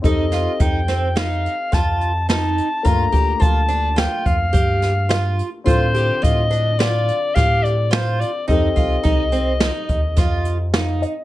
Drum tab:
HH |xxxxxxxxxx|xxxxxxxxxx|xxxxxxxxxx|xxxxxxxxxx|
SD |-o-oo-o-o-|----o--oo-|----o-o-o-|----o-o-o-|
BD |o-o---o---|ooo--oo---|o-o---o---|ooo--oo---|